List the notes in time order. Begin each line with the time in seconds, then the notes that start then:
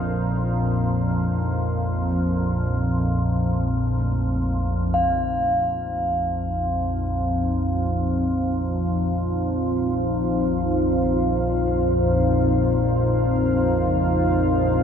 Already playing: A#1 F2 A#3 D#4 F4 C5 F5
2.12 F3
3.99 A3
4.89 A#1 F2 C#3
4.94 F5
13.86 C#3